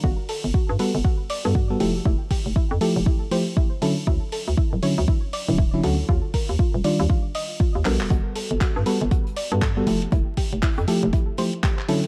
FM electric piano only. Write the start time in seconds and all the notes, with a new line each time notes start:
0.79 G3 B3 F#4 A4
1.45 G3 B3 F#4 A4
1.70 G3 B3 F#4 A4
1.80 F3 A3 E4 A4
2.81 F3 A3 E4 G4
3.31 F3 A3 E4 G4
3.82 D3 F#3 C#4 E4
4.83 D3 F#3 C#4 E4
5.48 D3 F#3 C#4 E4
5.73 D3 F#3 C#4 E4
5.83 D3 F#3 C#4 F#4
6.84 D#3 G3 D4 F4
7.85 G3 B3 F#4 A4
8.86 G3 B3 F#4 A4
9.52 G3 B3 F#4 A4
9.77 G3 B3 F#4 A4
9.87 F3 A3 E4 A4
10.88 F3 A3 E4 G4
11.38 F3 A3 E4 G4
11.89 D3 F#3 C#4 E4